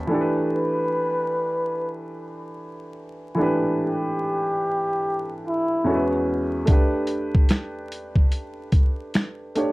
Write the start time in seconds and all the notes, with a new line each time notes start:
Already playing: C#4 F#4 B4 D#5 F#5 G5 A5 B5
0.07 E3 A3 D4
0.13 G4 A4
0.21 B4
0.53 B4
3.35 E3 A3 D4
3.41 G4 B4
3.83 G4
5.47 E4
5.84 E2 G#3 C#4 F#4 A4
5.94 B4
6.65 A3 D4, kick, closed hi-hat
6.70 G4 B4
7.07 closed hi-hat
7.35 kick
7.49 finger snap, snare, closed hi-hat
7.92 closed hi-hat
8.16 kick
8.32 closed hi-hat
8.72 kick, closed hi-hat
9.14 finger snap, snare, closed hi-hat
9.55 A3 D4 G4 C#5, closed hi-hat